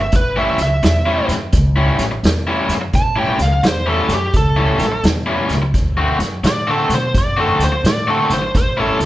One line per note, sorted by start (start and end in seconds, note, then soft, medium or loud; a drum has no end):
0.00 0.14 E5 medium
0.00 muted overdriven electric guitar stroke soft
0.12 0.48 A1 medium
0.12 0.37 B4 medium
0.12 kick loud
0.12 snare soft
0.12 closed hi-hat medium
0.36 0.58 A2 medium
0.36 0.58 G3 medium
0.36 0.58 C#4 medium
0.36 0.58 E4 medium
0.36 0.60 E5 medium
0.58 0.78 C#2 medium
0.58 muted overdriven electric guitar stroke soft
0.58 snare soft
0.58 closed hi-hat medium
0.63 1.29 E5 medium
0.83 1.19 E2 medium
0.83 muted overdriven electric guitar stroke soft
0.83 snare loud
0.83 closed hi-hat medium
1.06 1.33 A2 medium
1.06 1.33 G3 medium
1.06 1.33 C#4 medium
1.06 1.32 E4 medium
1.28 1.48 F#2 medium
1.28 snare soft
1.28 closed hi-hat medium
1.53 1.89 C#2 medium
1.53 kick loud
1.53 snare soft
1.53 closed hi-hat medium
1.76 2.03 A2 medium
1.76 2.03 G3 medium
1.76 2.03 C#4 medium
1.76 2.03 E4 medium
1.99 2.18 A1 medium
1.99 snare soft
1.99 closed hi-hat medium
2.11 muted overdriven electric guitar stroke soft
2.23 2.59 E2 medium
2.23 snare loud
2.23 closed hi-hat medium
2.47 2.74 A2 medium
2.47 2.74 G3 medium
2.47 2.73 C#4 medium
2.47 2.73 E4 medium
2.69 2.88 F#2 medium
2.69 snare soft
2.69 closed hi-hat medium
2.81 muted overdriven electric guitar stroke medium
2.93 3.29 A1 medium
2.93 3.17 A5 loud
2.93 kick loud
2.93 snare soft
2.93 closed hi-hat medium
3.16 3.38 A2 medium
3.16 3.38 G3 medium
3.16 3.39 C#4 medium
3.16 3.39 E4 medium
3.16 3.41 G5 medium
3.39 3.58 C#2 medium
3.39 3.64 F5 medium
3.39 muted overdriven electric guitar stroke soft
3.39 snare soft
3.39 closed hi-hat medium
3.63 3.99 E2 medium
3.63 muted overdriven electric guitar stroke soft
3.63 snare loud
3.63 closed hi-hat medium
3.67 3.88 C5 medium
3.86 4.13 A2 medium
3.86 4.13 G3 medium
3.86 4.13 C#4 medium
3.86 4.13 E4 medium
3.86 4.11 A4 medium
4.09 4.28 F#2 medium
4.09 snare soft
4.09 closed hi-hat medium
4.14 4.35 G4 medium
4.34 4.69 C#2 medium
4.34 5.03 A4 medium
4.34 kick loud
4.34 snare soft
4.34 closed hi-hat medium
4.56 4.84 A2 medium
4.56 4.84 G3 medium
4.56 4.83 C#4 medium
4.56 4.83 E4 medium
4.79 4.98 A1 medium
4.79 snare soft
4.79 closed hi-hat medium
4.92 muted overdriven electric guitar stroke soft
5.03 5.39 E2 medium
5.03 snare loud
5.03 closed hi-hat medium
5.26 5.54 A2 medium
5.26 5.53 G3 medium
5.26 5.53 C#4 medium
5.26 5.53 E4 medium
5.49 5.74 C#2 medium
5.49 snare soft
5.49 closed hi-hat medium
5.62 muted overdriven electric guitar stroke soft
5.74 6.09 D2 medium
5.74 kick loud
5.74 snare soft
5.74 closed hi-hat medium
5.97 6.19 D3 medium
5.97 6.19 A3 medium
5.97 6.19 C4 medium
5.97 6.19 F#4 loud
6.19 6.38 F#2 medium
6.19 muted overdriven electric guitar stroke soft
6.19 snare soft
6.19 closed hi-hat medium
6.43 6.79 A2 medium
6.43 6.68 D5 loud
6.43 muted overdriven electric guitar stroke soft
6.43 snare loud
6.43 closed hi-hat medium
6.67 6.94 D3 medium
6.67 6.94 A3 medium
6.67 6.94 C4 medium
6.67 6.94 F#4 medium
6.67 6.92 A4 medium
6.89 7.09 B2 medium
6.89 snare soft
6.89 closed hi-hat medium
6.95 7.16 C5 medium
7.14 7.50 F#2 medium
7.14 7.39 D5 medium
7.14 kick loud
7.14 snare soft
7.14 closed hi-hat medium
7.37 7.64 D3 medium
7.37 7.64 A3 medium
7.37 7.64 C4 medium
7.37 7.64 F#4 loud
7.37 7.62 A4 medium
7.59 7.79 D2 medium
7.59 snare soft
7.59 closed hi-hat medium
7.64 7.86 C5 medium
7.72 muted overdriven electric guitar stroke medium
7.84 8.20 A2 medium
7.84 8.08 D5 loud
7.84 snare loud
7.84 closed hi-hat medium
8.07 8.34 D3 medium
8.07 8.34 A3 medium
8.07 8.34 C4 medium
8.07 8.34 F#4 loud
8.07 8.32 A4 medium
8.30 8.49 G#1 medium
8.30 8.55 C5 medium
8.30 snare soft
8.30 closed hi-hat medium
8.42 muted overdriven electric guitar stroke medium
8.55 8.90 A1 medium
8.55 8.79 C5 loud
8.55 kick loud
8.55 snare soft
8.55 closed hi-hat medium
8.77 8.98 A2 medium
8.77 8.99 G3 medium
8.77 8.99 C#4 medium
8.77 8.99 E4 loud
8.77 9.02 A4 medium
9.00 9.05 C#2 medium
9.00 muted overdriven electric guitar stroke soft
9.00 snare soft
9.00 closed hi-hat medium